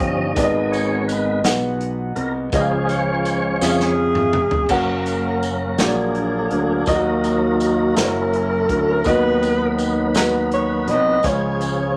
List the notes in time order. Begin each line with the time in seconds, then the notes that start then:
Already playing: D#3 F3 G3 A#3 C#4 D#4 G4 C#5
0.00 G1 D#5, kick, closed hi-hat
0.34 G#1 G#2 D#3 G#3 B3 D#4 G#4 D5, kick, closed hi-hat, tambourine
0.43 D#5
0.71 C#5, closed hi-hat, tambourine
1.07 B4, closed hi-hat, tambourine
1.44 B1 B3 D#4 G#4 F#5, snare, closed hi-hat, tambourine
1.81 closed hi-hat
2.16 C2 A#4, closed hi-hat
2.52 C#2 C#3 F3 G#3 C#4 F4 G#4 D#5, kick, closed hi-hat, tambourine
2.61 F5
2.89 C#5, closed hi-hat, tambourine
3.23 C#5, closed hi-hat, tambourine
3.61 F2 F3 G#3 C#4 F4 G#4 E5, snare, tambourine
3.69 F5
3.80 snare
4.15 mid tom
4.33 F1, mid tom
4.51 floor tom
4.69 F#1 F#3 A#3 C#4 F#4 A#4 F#5, kick, crash, tambourine
5.06 closed hi-hat, tambourine
5.43 closed hi-hat, tambourine
5.78 A#1 A#2 F#3 A#3 D4 F#4 G4 G#4 A#4 C#5, snare, closed hi-hat, tambourine
5.86 G#4 D5
6.15 closed hi-hat
6.51 D2, closed hi-hat
6.86 D#2 D#3 F#3 A#3 D#4 F4 F#4 A4 D#5, kick, closed hi-hat, tambourine
6.94 F#4 A#4
7.24 closed hi-hat, tambourine
7.60 closed hi-hat, tambourine
7.95 F#1 F#3 A#3 C#4 E4 F#4 A#4 C5, snare, closed hi-hat, tambourine
8.04 C#5
8.33 closed hi-hat
8.69 D2, kick, closed hi-hat
9.04 D#2 D#3 F#3 B3 D#4 F#4 B4 D#5, kick, closed hi-hat, tambourine
9.43 closed hi-hat, tambourine
9.79 closed hi-hat, tambourine
10.14 B3 D#4 F#4 B4 A#5, snare, closed hi-hat, tambourine
10.52 C#5, closed hi-hat
10.88 C2 D#5, closed hi-hat
11.23 C#2 C#3 F3 G#3 C#4 F4 G#4 C#5, kick, closed hi-hat, tambourine
11.61 closed hi-hat, tambourine